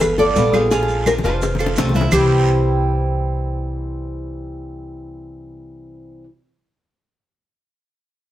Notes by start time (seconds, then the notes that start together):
Already playing: G1 F5
0.00 B4, muted steel-string acoustic guitar stroke, cowbell, high conga, low conga, long guiro, claves, maracas
0.18 B3 F4 A4 D5, high conga, low conga, maracas
0.36 A#1 G3 B3 F4, cowbell, high conga, short guiro, maracas
0.53 B3 F4 G4 G#4, cowbell, high conga, short guiro, claves, maracas
0.71 F3 G#3 D4 F4 G#4, cowbell, high bongo, high conga, long guiro, maracas
0.83 high bongo
0.89 high conga, maracas
1.06 F3 G#3 D4 F4 A#4, cowbell, high bongo, high conga, short guiro, claves, maracas
1.19 low bongo
1.24 F1 G#3 D4 F4 C5, cowbell, short guiro, maracas
1.42 muted steel-string acoustic guitar stroke, cowbell, low bongo, high conga, long guiro, maracas
1.55 low bongo, maracas
1.59 A3 C4 F4 A4, high conga, claves
1.66 low bongo
1.76 C2 C3 F3 A3 C4 F4, cowbell, low bongo, high conga, short guiro, maracas
1.89 low bongo
1.94 A3 C4 E4 F4, high conga, short guiro, maracas
2.01 low bongo
2.11 C2 C3 E3 G3 C4 E4 G4 C5, low bongo, low conga, long guiro, claves, maracas